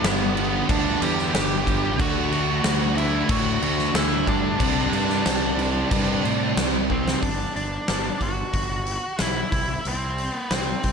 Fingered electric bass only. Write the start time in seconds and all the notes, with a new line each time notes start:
0.04 G1
0.69 D2
1.02 E2
1.34 G1
1.99 D2
2.31 D2
2.65 D2
3.29 A2
3.62 D2
3.94 D2
4.28 G2
4.60 C2
4.93 G2
5.26 C2
5.91 G2
6.24 A2
6.57 C2
7.23 G1
7.56 G1
7.88 G1
8.21 G1
8.54 G1
9.21 B1
9.53 C2
9.85 C2
10.51 C2
10.84 C2